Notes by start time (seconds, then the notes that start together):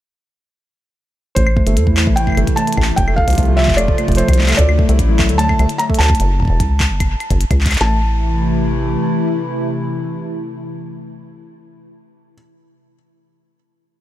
1.35 A1 C3 E3 A3 E4 C5, kick, closed hi-hat
1.47 claves
1.57 A3, kick
1.67 G1 A3, closed hi-hat
1.77 E2 A4, closed hi-hat
1.87 A3, kick
1.97 A3, clap
2.07 A1 A3, kick
2.16 G5, closed hi-hat
2.27 A3, kick, claves
2.30 claves
2.32 claves
2.35 G1 A3, closed hi-hat, claves
2.37 claves
2.47 A4, kick, closed hi-hat
2.56 A3 A5, closed hi-hat
2.67 A3, closed hi-hat
2.73 closed hi-hat
2.77 A1 A3, kick, claves
2.82 clap
2.96 F1 F3 A3 F4 G5, kick, closed hi-hat
3.08 A3, claves
3.16 A4 F5, kick
3.28 C2 A3, closed hi-hat
3.30 closed hi-hat
3.33 closed hi-hat
3.35 closed hi-hat
3.38 C2 A3, kick, closed hi-hat
3.43 closed hi-hat
3.48 A3
3.57 E5, clap
3.63 clap
3.68 F1 A3, kick, clap
3.73 D5, clap
3.78 A3, closed hi-hat, claves
3.88 A4, kick
3.98 A3, closed hi-hat, claves
4.08 F1 A3, kick, closed hi-hat
4.12 closed hi-hat
4.15 C5, closed hi-hat
4.18 A3, closed hi-hat
4.29 C2, kick, closed hi-hat, claves
4.33 closed hi-hat
4.39 A3, clap
4.41 clap
4.43 clap
4.46 clap
4.49 A3, clap, closed hi-hat, claves
4.51 clap
4.54 clap
4.56 D2 D3 F#3 A3 E4 A4 D5, kick, clap, closed hi-hat
4.69 A3, claves
4.79 A3, kick
4.89 C2 A3, closed hi-hat
4.99 A1, kick, closed hi-hat
5.09 A3
5.19 A3, kick, clap
5.29 D2 A4, closed hi-hat
5.38 A3 A5, closed hi-hat
5.49 A3, kick, claves
5.59 C2 A3, closed hi-hat, claves
5.69 closed hi-hat
5.78 A3 A#5, closed hi-hat
5.90 A3, kick
5.94 closed hi-hat
5.99 D2 A4 A5, clap
6.02 clap
6.05 clap
6.07 A3, kick, clap
6.15 closed hi-hat
6.20 F#1, closed hi-hat
6.40 kick
6.42 kick
6.45 kick
6.48 E1, kick
6.60 C#2, kick, closed hi-hat
6.80 kick, clap
6.90 F#1
7.00 kick, closed hi-hat, claves
7.20 closed hi-hat, claves
7.30 F#1, kick, closed hi-hat
7.41 closed hi-hat
7.51 C#2, kick, closed hi-hat, claves
7.61 clap
7.66 kick, clap, closed hi-hat
7.71 clap, closed hi-hat, claves
7.74 clap, closed hi-hat
7.78 A1 C3 E3 A3 E4 A5, snare, clap, closed hi-hat